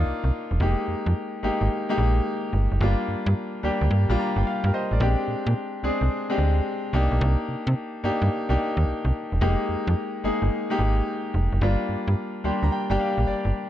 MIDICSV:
0, 0, Header, 1, 3, 480
1, 0, Start_track
1, 0, Key_signature, -3, "minor"
1, 0, Tempo, 550459
1, 526, Time_signature, 4, 2, 24, 8
1, 11942, End_track
2, 0, Start_track
2, 0, Title_t, "Grand piano"
2, 0, Program_c, 0, 0
2, 0, Control_c, 0, 64, 127
2, 0, Note_on_c, 0, 58, 91
2, 0, Note_on_c, 0, 62, 83
2, 0, Note_on_c, 0, 63, 87
2, 0, Note_on_c, 0, 65, 108
2, 0, Note_on_c, 0, 67, 109
2, 266, Note_off_c, 0, 58, 0
2, 267, Note_off_c, 0, 62, 0
2, 269, Note_off_c, 0, 63, 0
2, 271, Note_off_c, 0, 65, 0
2, 534, Note_on_c, 0, 56, 90
2, 535, Note_on_c, 0, 58, 79
2, 539, Control_c, 0, 64, 0
2, 541, Note_on_c, 0, 63, 79
2, 544, Note_off_c, 0, 67, 0
2, 544, Note_on_c, 0, 67, 96
2, 698, Control_c, 0, 64, 127
2, 1017, Note_off_c, 0, 56, 0
2, 1018, Note_off_c, 0, 58, 0
2, 1020, Note_off_c, 0, 63, 0
2, 1022, Note_off_c, 0, 67, 0
2, 1246, Note_on_c, 0, 56, 84
2, 1250, Note_on_c, 0, 58, 78
2, 1255, Note_on_c, 0, 63, 78
2, 1258, Note_on_c, 0, 67, 93
2, 1489, Note_off_c, 0, 56, 0
2, 1491, Note_off_c, 0, 58, 0
2, 1494, Note_off_c, 0, 63, 0
2, 1495, Note_off_c, 0, 67, 0
2, 1649, Note_on_c, 0, 56, 92
2, 1654, Note_on_c, 0, 58, 86
2, 1658, Note_on_c, 0, 63, 87
2, 1660, Note_on_c, 0, 67, 106
2, 2185, Note_off_c, 0, 56, 0
2, 2187, Note_off_c, 0, 58, 0
2, 2189, Note_off_c, 0, 63, 0
2, 2190, Note_off_c, 0, 67, 0
2, 2450, Note_on_c, 0, 55, 91
2, 2455, Note_on_c, 0, 58, 80
2, 2457, Note_on_c, 0, 62, 79
2, 2459, Control_c, 0, 64, 0
2, 2462, Note_on_c, 0, 65, 94
2, 2604, Control_c, 0, 64, 127
2, 2935, Note_off_c, 0, 55, 0
2, 2938, Note_off_c, 0, 58, 0
2, 2938, Note_off_c, 0, 62, 0
2, 2941, Note_off_c, 0, 65, 0
2, 3167, Note_on_c, 0, 55, 85
2, 3172, Note_on_c, 0, 58, 77
2, 3175, Note_on_c, 0, 62, 76
2, 3179, Note_on_c, 0, 67, 96
2, 3410, Note_off_c, 0, 55, 0
2, 3412, Note_off_c, 0, 58, 0
2, 3414, Note_off_c, 0, 62, 0
2, 3416, Note_off_c, 0, 67, 0
2, 3571, Note_on_c, 0, 55, 97
2, 3572, Note_on_c, 0, 58, 85
2, 3577, Note_on_c, 0, 62, 89
2, 3579, Note_on_c, 0, 65, 102
2, 3657, Note_on_c, 0, 82, 76
2, 3801, Note_off_c, 0, 82, 0
2, 3817, Note_on_c, 0, 79, 69
2, 3886, Note_off_c, 0, 79, 0
2, 3898, Note_on_c, 0, 77, 80
2, 4058, Note_on_c, 0, 70, 67
2, 4064, Note_on_c, 0, 67, 60
2, 4106, Note_off_c, 0, 55, 0
2, 4106, Note_off_c, 0, 58, 0
2, 4109, Note_off_c, 0, 62, 0
2, 4110, Note_off_c, 0, 65, 0
2, 4115, Note_off_c, 0, 77, 0
2, 4128, Note_off_c, 0, 70, 0
2, 4131, Note_off_c, 0, 67, 0
2, 4132, Note_on_c, 0, 75, 83
2, 4133, Note_on_c, 0, 72, 78
2, 4282, Note_off_c, 0, 72, 0
2, 4294, Note_on_c, 0, 74, 70
2, 4299, Note_on_c, 0, 70, 52
2, 4352, Note_off_c, 0, 75, 0
2, 4367, Note_on_c, 0, 56, 83
2, 4371, Note_on_c, 0, 60, 75
2, 4374, Note_on_c, 0, 62, 86
2, 4378, Note_on_c, 0, 67, 95
2, 4379, Control_c, 0, 64, 0
2, 4518, Note_off_c, 0, 74, 0
2, 4521, Note_off_c, 0, 70, 0
2, 4543, Control_c, 0, 64, 127
2, 4853, Note_off_c, 0, 56, 0
2, 4855, Note_off_c, 0, 60, 0
2, 4857, Note_off_c, 0, 62, 0
2, 4859, Note_off_c, 0, 67, 0
2, 5088, Note_on_c, 0, 56, 83
2, 5090, Note_on_c, 0, 60, 81
2, 5093, Note_on_c, 0, 62, 77
2, 5096, Note_on_c, 0, 68, 93
2, 5331, Note_off_c, 0, 56, 0
2, 5331, Note_off_c, 0, 60, 0
2, 5333, Note_off_c, 0, 62, 0
2, 5335, Note_off_c, 0, 68, 0
2, 5490, Note_on_c, 0, 56, 97
2, 5493, Note_on_c, 0, 60, 83
2, 5498, Note_on_c, 0, 62, 82
2, 5501, Note_on_c, 0, 67, 96
2, 6025, Note_off_c, 0, 56, 0
2, 6027, Note_off_c, 0, 60, 0
2, 6029, Note_off_c, 0, 62, 0
2, 6031, Note_off_c, 0, 67, 0
2, 6048, Note_on_c, 0, 58, 99
2, 6055, Note_on_c, 0, 62, 89
2, 6056, Note_on_c, 0, 63, 89
2, 6059, Control_c, 0, 64, 0
2, 6061, Note_on_c, 0, 67, 104
2, 6198, Control_c, 0, 64, 127
2, 6831, Note_off_c, 0, 58, 0
2, 6834, Note_off_c, 0, 62, 0
2, 6835, Note_off_c, 0, 63, 0
2, 6838, Note_off_c, 0, 67, 0
2, 7008, Note_on_c, 0, 58, 90
2, 7013, Note_on_c, 0, 62, 75
2, 7013, Note_on_c, 0, 63, 80
2, 7020, Note_on_c, 0, 67, 99
2, 7251, Note_off_c, 0, 58, 0
2, 7253, Note_off_c, 0, 62, 0
2, 7253, Note_off_c, 0, 63, 0
2, 7257, Note_off_c, 0, 67, 0
2, 7403, Note_on_c, 0, 58, 89
2, 7407, Note_on_c, 0, 62, 81
2, 7411, Note_on_c, 0, 63, 84
2, 7413, Note_on_c, 0, 67, 101
2, 7942, Note_off_c, 0, 58, 0
2, 7944, Note_off_c, 0, 62, 0
2, 7946, Note_off_c, 0, 63, 0
2, 7947, Note_off_c, 0, 67, 0
2, 8205, Note_on_c, 0, 56, 96
2, 8208, Note_on_c, 0, 58, 88
2, 8211, Note_on_c, 0, 63, 81
2, 8216, Note_on_c, 0, 67, 98
2, 8219, Control_c, 0, 64, 0
2, 8373, Control_c, 0, 64, 127
2, 8693, Note_off_c, 0, 56, 0
2, 8694, Note_off_c, 0, 58, 0
2, 8695, Note_off_c, 0, 63, 0
2, 8698, Note_off_c, 0, 67, 0
2, 8928, Note_on_c, 0, 56, 87
2, 8932, Note_on_c, 0, 58, 78
2, 8935, Note_on_c, 0, 63, 79
2, 8937, Note_on_c, 0, 68, 97
2, 9171, Note_off_c, 0, 56, 0
2, 9173, Note_off_c, 0, 58, 0
2, 9174, Note_off_c, 0, 63, 0
2, 9175, Note_off_c, 0, 68, 0
2, 9331, Note_on_c, 0, 56, 91
2, 9334, Note_on_c, 0, 58, 79
2, 9336, Note_on_c, 0, 63, 83
2, 9341, Note_on_c, 0, 67, 102
2, 9866, Note_off_c, 0, 56, 0
2, 9867, Note_off_c, 0, 58, 0
2, 9869, Note_off_c, 0, 63, 0
2, 9871, Note_off_c, 0, 67, 0
2, 10131, Note_on_c, 0, 55, 93
2, 10133, Note_on_c, 0, 58, 74
2, 10137, Control_c, 0, 64, 0
2, 10137, Note_on_c, 0, 62, 82
2, 10141, Note_on_c, 0, 65, 93
2, 10273, Control_c, 0, 64, 127
2, 10616, Note_off_c, 0, 55, 0
2, 10616, Note_off_c, 0, 58, 0
2, 10618, Note_off_c, 0, 62, 0
2, 10621, Note_off_c, 0, 65, 0
2, 10848, Note_on_c, 0, 55, 83
2, 10854, Note_on_c, 0, 58, 73
2, 10854, Note_on_c, 0, 62, 80
2, 10854, Note_on_c, 0, 84, 74
2, 10859, Note_on_c, 0, 67, 91
2, 10999, Note_off_c, 0, 84, 0
2, 11016, Note_on_c, 0, 82, 75
2, 11086, Note_off_c, 0, 82, 0
2, 11091, Note_off_c, 0, 55, 0
2, 11093, Note_off_c, 0, 58, 0
2, 11093, Note_off_c, 0, 62, 0
2, 11093, Note_on_c, 0, 79, 80
2, 11096, Note_off_c, 0, 67, 0
2, 11239, Note_off_c, 0, 79, 0
2, 11245, Note_on_c, 0, 55, 92
2, 11251, Note_on_c, 0, 58, 81
2, 11253, Note_on_c, 0, 62, 89
2, 11254, Note_on_c, 0, 79, 81
2, 11257, Note_on_c, 0, 67, 106
2, 11324, Note_off_c, 0, 79, 0
2, 11334, Note_on_c, 0, 77, 77
2, 11553, Note_off_c, 0, 77, 0
2, 11573, Note_on_c, 0, 74, 81
2, 11783, Note_off_c, 0, 55, 0
2, 11786, Note_off_c, 0, 58, 0
2, 11787, Note_off_c, 0, 62, 0
2, 11789, Note_off_c, 0, 67, 0
2, 11942, Note_off_c, 0, 74, 0
2, 11942, End_track
3, 0, Start_track
3, 0, Title_t, "FM bass"
3, 0, Program_c, 1, 39
3, 50, Note_on_c, 1, 36, 49
3, 113, Note_off_c, 1, 36, 0
3, 208, Note_on_c, 1, 36, 92
3, 273, Note_off_c, 1, 36, 0
3, 446, Note_on_c, 1, 28, 90
3, 512, Note_off_c, 1, 28, 0
3, 525, Note_on_c, 1, 29, 119
3, 657, Note_off_c, 1, 29, 0
3, 768, Note_on_c, 1, 41, 47
3, 831, Note_off_c, 1, 41, 0
3, 928, Note_on_c, 1, 41, 98
3, 993, Note_off_c, 1, 41, 0
3, 1249, Note_on_c, 1, 32, 53
3, 1312, Note_off_c, 1, 32, 0
3, 1406, Note_on_c, 1, 32, 93
3, 1472, Note_off_c, 1, 32, 0
3, 1726, Note_on_c, 1, 34, 104
3, 1923, Note_off_c, 1, 34, 0
3, 2207, Note_on_c, 1, 31, 97
3, 2338, Note_off_c, 1, 31, 0
3, 2369, Note_on_c, 1, 30, 89
3, 2434, Note_off_c, 1, 30, 0
3, 2447, Note_on_c, 1, 31, 122
3, 2578, Note_off_c, 1, 31, 0
3, 2689, Note_on_c, 1, 43, 49
3, 2752, Note_off_c, 1, 43, 0
3, 2846, Note_on_c, 1, 43, 112
3, 2912, Note_off_c, 1, 43, 0
3, 3169, Note_on_c, 1, 38, 51
3, 3232, Note_off_c, 1, 38, 0
3, 3326, Note_on_c, 1, 38, 89
3, 3392, Note_off_c, 1, 38, 0
3, 3406, Note_on_c, 1, 43, 104
3, 3538, Note_off_c, 1, 43, 0
3, 3566, Note_on_c, 1, 34, 83
3, 3632, Note_off_c, 1, 34, 0
3, 3805, Note_on_c, 1, 31, 101
3, 3871, Note_off_c, 1, 31, 0
3, 4045, Note_on_c, 1, 43, 101
3, 4111, Note_off_c, 1, 43, 0
3, 4285, Note_on_c, 1, 33, 89
3, 4351, Note_off_c, 1, 33, 0
3, 4363, Note_on_c, 1, 34, 125
3, 4496, Note_off_c, 1, 34, 0
3, 4603, Note_on_c, 1, 46, 49
3, 4668, Note_off_c, 1, 46, 0
3, 4765, Note_on_c, 1, 46, 104
3, 4831, Note_off_c, 1, 46, 0
3, 5085, Note_on_c, 1, 36, 50
3, 5149, Note_off_c, 1, 36, 0
3, 5243, Note_on_c, 1, 36, 90
3, 5310, Note_off_c, 1, 36, 0
3, 5564, Note_on_c, 1, 38, 89
3, 5762, Note_off_c, 1, 38, 0
3, 6045, Note_on_c, 1, 36, 100
3, 6177, Note_off_c, 1, 36, 0
3, 6206, Note_on_c, 1, 35, 94
3, 6272, Note_off_c, 1, 35, 0
3, 6288, Note_on_c, 1, 36, 127
3, 6419, Note_off_c, 1, 36, 0
3, 6528, Note_on_c, 1, 48, 46
3, 6591, Note_off_c, 1, 48, 0
3, 6687, Note_on_c, 1, 48, 108
3, 6752, Note_off_c, 1, 48, 0
3, 7008, Note_on_c, 1, 43, 52
3, 7071, Note_off_c, 1, 43, 0
3, 7165, Note_on_c, 1, 43, 98
3, 7231, Note_off_c, 1, 43, 0
3, 7407, Note_on_c, 1, 36, 88
3, 7472, Note_off_c, 1, 36, 0
3, 7647, Note_on_c, 1, 39, 103
3, 7712, Note_off_c, 1, 39, 0
3, 7726, Note_on_c, 1, 36, 53
3, 7790, Note_off_c, 1, 36, 0
3, 7889, Note_on_c, 1, 36, 98
3, 7954, Note_off_c, 1, 36, 0
3, 8130, Note_on_c, 1, 28, 87
3, 8194, Note_off_c, 1, 28, 0
3, 8210, Note_on_c, 1, 29, 126
3, 8340, Note_off_c, 1, 29, 0
3, 8450, Note_on_c, 1, 41, 51
3, 8513, Note_off_c, 1, 41, 0
3, 8610, Note_on_c, 1, 41, 109
3, 8674, Note_off_c, 1, 41, 0
3, 8928, Note_on_c, 1, 31, 48
3, 8992, Note_off_c, 1, 31, 0
3, 9088, Note_on_c, 1, 31, 97
3, 9153, Note_off_c, 1, 31, 0
3, 9409, Note_on_c, 1, 32, 96
3, 9605, Note_off_c, 1, 32, 0
3, 9890, Note_on_c, 1, 29, 99
3, 10020, Note_off_c, 1, 29, 0
3, 10050, Note_on_c, 1, 30, 94
3, 10114, Note_off_c, 1, 30, 0
3, 10127, Note_on_c, 1, 31, 120
3, 10259, Note_off_c, 1, 31, 0
3, 10368, Note_on_c, 1, 43, 47
3, 10432, Note_off_c, 1, 43, 0
3, 10530, Note_on_c, 1, 43, 98
3, 10594, Note_off_c, 1, 43, 0
3, 10850, Note_on_c, 1, 38, 51
3, 10913, Note_off_c, 1, 38, 0
3, 11010, Note_on_c, 1, 38, 81
3, 11074, Note_off_c, 1, 38, 0
3, 11250, Note_on_c, 1, 31, 88
3, 11314, Note_off_c, 1, 31, 0
3, 11491, Note_on_c, 1, 34, 95
3, 11555, Note_off_c, 1, 34, 0
3, 11729, Note_on_c, 1, 31, 95
3, 11794, Note_off_c, 1, 31, 0
3, 11942, End_track
0, 0, End_of_file